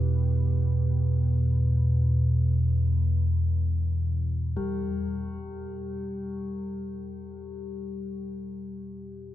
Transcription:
Already playing: synth drone E2 B2, analog synth pad B3 E4 G4 B4
4.57 singing bowl G3 G4
4.61 synth drone E2 B2

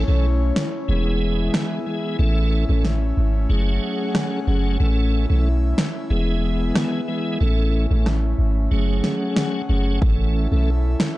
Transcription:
Already playing: analog synth pad A3 C#4 E4 C#5
0.08 808-style bass B1, tonewheel organ E3 A3 C#4 A4
0.56 snare
0.88 808-style bass E1, tonewheel organ E3 G#3 B3 G#4, analog synth pad B3 G#4 E5
1.54 cross-stick, snare
1.86 tonewheel organ E3 G#3 B3 G#4
2.19 808-style bass A1, tonewheel organ E3 A3 C#4 A4, analog synth pad A3 C#4
2.69 808-style bass A1, tonewheel organ E3 A3 C#4 A4
2.85 snare
3.17 808-style bass G#1
3.49 808-style bass F#1, tonewheel organ F#3 A3 C#4 G#4, analog synth pad G#4 F#5
4.15 cross-stick, snare
4.47 808-style bass F#1, tonewheel organ F#3 A3 C#4 G#4
4.80 808-style bass A1, tonewheel organ E3 A3 C#4 A4, analog synth pad E4 E5
5.30 808-style bass B1, tonewheel organ E3 A3 C#4 A4
5.78 snare
6.10 808-style bass E1, tonewheel organ E3 G#3 B3 G#4, analog synth pad B3 G#4
6.76 cross-stick, snare
7.08 tonewheel organ E3 G#3 B3 G#4
7.40 808-style bass A1, tonewheel organ E3 A3 C#4 A4, analog synth pad A3 C#4
7.91 808-style bass A1, tonewheel organ E3 A3 C#4 A4
8.06 cross-stick, snare
8.39 808-style bass G#1
8.71 808-style bass F#1, tonewheel organ F#3 A3 C#4 G#4, analog synth pad G#4 F#5
9.04 snare
9.36 snare
9.69 808-style bass F#1, tonewheel organ F#3 A3 C#4 G#4
10.02 808-style bass A1, tonewheel organ E3 A3 C#4 A4, analog synth pad E4 A4 E5, kick
10.51 808-style bass B1, tonewheel organ E3 A3 C#4 A4
11.00 snare

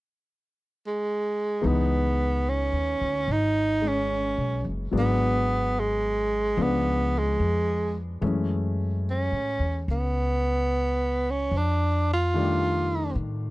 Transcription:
0.87 tenor saxophone G#3
1.61 upright bass C#2, grand piano E3 G#3 B3 D#4
1.67 tenor saxophone B3
2.49 tenor saxophone C#4
2.73 upright bass D#2
3.01 upright bass D2
3.28 upright bass G#1
3.32 tenor saxophone D#4
3.82 grand piano G#3 C#4
3.88 tenor saxophone C#4
4.38 upright bass B1
4.64 upright bass F#1
4.91 upright bass G#1, grand piano F#3 G#3 B3 D4
4.98 tenor saxophone B3
5.79 tenor saxophone G#3
6.57 upright bass C#2, grand piano F3 G#3 B3 D4
6.62 tenor saxophone B3
7.18 tenor saxophone G#3
7.39 upright bass F2
8.21 upright bass F#2, grand piano E3 G#3 A3 C#4
9.10 tenor saxophone C#4
9.32 upright bass A2
9.59 upright bass E2
9.88 upright bass C#2, tenor saxophone B3
11.31 tenor saxophone C#4
11.51 upright bass F2
11.57 tenor saxophone D4
12.13 tenor saxophone F4
12.34 grand piano D#3 G3 A3 D4
13.15 upright bass A2

